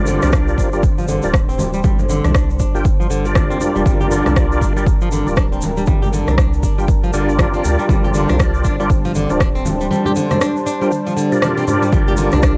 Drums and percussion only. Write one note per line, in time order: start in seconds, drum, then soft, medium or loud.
0.06 high conga medium
0.06 shaker medium
0.22 cross-stick medium
0.22 high conga medium
0.22 low conga loud
0.22 shaker soft
0.32 kick loud
0.32 cross-stick loud
0.32 shaker medium
0.48 shaker soft
0.58 kick medium
0.58 shaker medium
0.73 shaker soft
0.83 kick loud
0.83 shaker medium
0.98 shaker soft
1.08 high conga medium
1.08 shaker medium
1.22 shaker soft
1.34 kick loud
1.34 cross-stick loud
1.34 shaker soft
1.49 shaker soft
1.58 high conga loud
1.58 low conga medium
1.58 shaker medium
1.74 shaker soft
1.84 kick loud
1.84 high conga loud
1.84 shaker medium
1.99 low conga loud
1.99 shaker soft
2.10 high conga medium
2.10 shaker medium
2.24 cross-stick medium
2.24 high conga loud
2.24 low conga loud
2.24 shaker soft
2.35 kick loud
2.35 cross-stick loud
2.35 shaker medium
2.50 shaker soft
2.60 kick medium
2.60 shaker loud
2.75 shaker soft
2.85 kick loud
2.85 shaker medium
3.01 shaker soft
3.11 shaker medium
3.25 shaker soft
3.35 kick loud
3.35 cross-stick loud
3.35 high conga medium
3.35 low conga medium
3.35 shaker medium
3.51 shaker soft
3.61 low conga medium
3.61 shaker medium
3.76 shaker soft
3.86 kick loud
3.86 high conga medium
3.86 shaker medium
4.01 low conga loud
4.01 shaker soft
4.11 high conga medium
4.11 shaker medium
4.26 cross-stick medium
4.26 high conga loud
4.26 low conga loud
4.26 shaker soft
4.36 kick loud
4.36 cross-stick loud
4.36 shaker medium
4.52 shaker soft
4.61 kick medium
4.61 shaker medium
4.77 shaker soft
4.87 kick loud
4.87 shaker medium
5.01 shaker soft
5.12 high conga medium
5.12 shaker medium
5.27 shaker soft
5.36 kick loud
5.36 cross-stick loud
5.36 shaker soft
5.53 shaker soft
5.61 high conga loud
5.61 low conga medium
5.61 shaker medium
5.77 shaker soft
5.86 kick loud
5.86 high conga loud
5.86 shaker soft
6.03 low conga medium
6.03 shaker soft
6.13 high conga medium
6.13 shaker medium
6.28 cross-stick medium
6.28 high conga medium
6.28 low conga medium
6.28 shaker soft
6.38 kick loud
6.38 cross-stick loud
6.38 shaker soft
6.53 shaker soft
6.63 kick medium
6.63 shaker medium
6.79 shaker soft
6.88 kick loud
6.88 shaker medium
7.04 shaker soft
7.14 shaker loud
7.29 shaker soft
7.39 kick loud
7.39 cross-stick loud
7.39 high conga medium
7.39 low conga medium
7.39 shaker soft
7.54 shaker soft
7.64 low conga medium
7.64 shaker medium
7.79 shaker soft
7.89 kick loud
7.89 high conga loud
7.89 shaker medium
8.04 low conga loud
8.04 shaker soft
8.14 high conga medium
8.14 shaker medium
8.29 cross-stick medium
8.29 high conga medium
8.29 low conga medium
8.29 shaker soft
8.40 kick loud
8.40 cross-stick loud
8.40 shaker medium
8.54 shaker soft
8.65 kick medium
8.65 shaker medium
8.80 shaker soft
8.90 kick loud
8.90 shaker soft
9.05 shaker soft
9.15 high conga medium
9.15 shaker medium
9.30 shaker soft
9.40 kick loud
9.40 cross-stick loud
9.40 shaker soft
9.56 shaker soft
9.66 high conga loud
9.66 low conga medium
9.66 shaker medium
9.81 shaker soft
9.91 high conga loud
9.91 shaker soft
10.05 low conga loud
10.05 shaker soft
10.16 high conga medium
10.16 shaker medium
10.31 cross-stick medium
10.31 high conga medium
10.31 low conga loud
10.31 shaker soft
10.41 cross-stick loud
10.41 shaker medium
10.56 shaker soft
10.67 shaker medium
10.82 shaker soft
10.92 high tom medium
10.92 shaker soft
11.07 high tom medium
11.07 shaker soft
11.17 shaker loud
11.32 mid tom medium
11.32 shaker soft
11.42 cross-stick loud
11.42 mid tom medium
11.42 high conga medium
11.42 low conga medium
11.42 shaker soft
11.57 mid tom medium
11.57 shaker soft
11.67 mid tom medium
11.67 low conga medium
11.67 shaker medium
11.82 mid tom medium
11.82 shaker soft
11.92 kick loud
11.92 high conga loud
11.92 shaker soft
12.08 low conga loud
12.08 shaker soft
12.17 high conga medium
12.17 shaker medium
12.32 cross-stick medium
12.32 high conga medium
12.32 low conga loud
12.32 shaker soft
12.43 kick loud
12.43 cross-stick loud
12.43 shaker medium